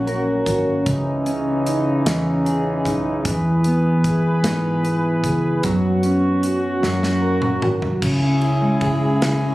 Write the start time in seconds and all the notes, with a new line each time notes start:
Already playing: A#1 F#3 A#3 C#4 F#4
0.07 A#4, closed hi-hat
0.46 G#1 F#4, kick, closed hi-hat
0.86 C#2 C#3 E3 D#4, kick, closed hi-hat
1.26 C#4, closed hi-hat
1.66 D#4, closed hi-hat
2.06 E2 C#4, snare, closed hi-hat
2.46 G#4, closed hi-hat
2.85 B1 D#4, kick, closed hi-hat
3.25 E2 E3 E4 G#4 B4, kick, closed hi-hat
3.64 B3, closed hi-hat
4.04 G#4, kick, closed hi-hat
4.43 G#2 B3, snare, closed hi-hat
4.83 B4, closed hi-hat
5.23 C#2 G#4, kick, closed hi-hat
5.63 F#2 F#3 B3 C#4 F#4, kick, closed hi-hat
6.03 C#4, closed hi-hat
6.43 F#4, closed hi-hat
6.82 F#2 F#3 A#3, snare
7.03 snare
7.22 A#4
7.42 mid tom
7.62 G#1 F#4, mid tom
7.82 floor tom
8.02 C#2 C#3 C#4 E4 G#4, kick, crash
8.22 C#4
8.41 E4, ride
8.62 G#3
8.81 C#2 G#4, kick, ride
9.02 E4
9.22 C#3, snare, ride
9.42 C#4